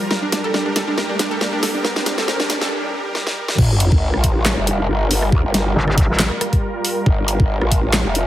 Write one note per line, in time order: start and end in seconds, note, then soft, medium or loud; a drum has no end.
0.00 3.55 G3 medium
0.00 3.55 A#4 medium
0.00 riser medium
0.11 3.55 G4 medium
0.11 0.19 A#4 medium
0.11 snare medium
0.22 0.30 D4 medium
0.32 0.41 D4 medium
0.32 snare medium
0.32 closed hi-hat medium
0.44 0.51 A4 medium
0.54 0.63 D4 medium
0.54 snare medium
0.66 0.73 D4 medium
0.76 0.84 A4 medium
0.76 snare medium
0.76 closed hi-hat medium
0.88 0.95 D4 medium
0.98 1.06 A#4 medium
0.98 snare medium
1.09 1.17 D4 medium
1.19 1.28 D4 medium
1.19 snare medium
1.19 closed hi-hat medium
1.31 1.38 A4 medium
1.41 1.50 D4 medium
1.41 snare medium
1.53 1.60 D4 medium
1.63 1.71 A4 medium
1.63 snare medium
1.63 open hi-hat medium
1.75 1.82 D4 medium
1.85 1.93 A#4 loud
1.85 snare medium
1.96 2.04 D4 medium
1.96 snare medium
2.06 2.15 D4 medium
2.06 snare loud
2.06 closed hi-hat medium
2.18 2.25 A4 medium
2.18 snare medium
2.28 2.37 A#4 loud
2.28 snare medium
2.40 2.47 D4 medium
2.40 snare medium
2.50 2.58 D4 medium
2.50 snare loud
2.50 closed hi-hat medium
2.61 2.69 A4 medium
2.61 snare medium
3.15 snare medium
3.27 snare medium
3.48 snare medium
3.58 3.90 G1 loud
3.58 8.27 G3 medium
3.58 8.27 F4 medium
3.58 8.27 A#4 loud
3.58 kick loud
3.58 crash loud
3.58 sub drop medium
3.80 closed hi-hat medium
3.92 4.12 G1 medium
3.92 kick loud
4.14 4.55 A1 loud
4.14 cross-stick medium
4.24 kick medium
4.24 closed hi-hat medium
4.45 snare loud
4.45 clap medium
4.57 4.87 F1 loud
4.67 closed hi-hat medium
4.89 5.31 G1 loud
5.11 open hi-hat medium
5.22 cross-stick medium
5.32 5.42 D2 loud
5.32 kick loud
5.44 5.74 G1 loud
5.54 snare medium
5.54 closed hi-hat medium
5.76 6.07 G1 medium
5.88 cross-stick medium
5.98 kick loud
5.98 closed hi-hat medium
6.09 6.29 A1 loud
6.19 snare loud
6.19 clap loud
6.31 cross-stick medium
6.41 cross-stick medium
6.41 closed hi-hat medium
6.53 kick medium
6.53 closed hi-hat soft
6.85 open hi-hat medium
7.06 7.38 G1 loud
7.06 kick loud
7.28 closed hi-hat medium
7.40 7.60 G1 loud
7.40 kick loud
7.61 8.03 A1 loud
7.61 cross-stick medium
7.72 kick medium
7.72 closed hi-hat medium
7.93 snare loud
7.93 clap medium
8.05 8.27 F1 loud
8.15 closed hi-hat medium